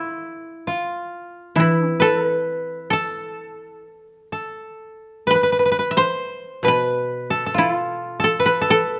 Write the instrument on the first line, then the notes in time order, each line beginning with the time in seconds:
koto
Already playing: E4 A4 B4
0.67 F4
1.56 E3 E4
1.60 E4
1.87 C4
2.00 A4 B4
2.28 B4
2.90 A4
4.32 A4
5.27 B4
5.35 B4
5.43 B4
5.52 B4
5.59 B4
5.65 B4
5.72 B4
5.79 B4
5.91 E5
5.97 C5
6.63 B2 B4
6.68 B4
7.30 A4
7.46 A4
7.54 E4 F4
7.73 F4
8.20 A4
8.24 A4
8.40 B4
8.46 B4
8.61 A4
8.70 A4